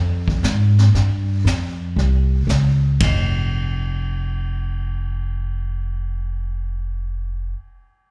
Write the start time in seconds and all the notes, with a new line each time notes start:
Already playing: F2
0.28 kick
0.43 G#2, snare, hi-hat pedal
0.78 snare
0.94 G2, brush sweep, snare
1.45 F2, snare, hi-hat pedal
1.96 C2, brush sweep, snare
2.47 C#2, snare, hi-hat pedal
3.00 F1, kick, floor tom, ride bell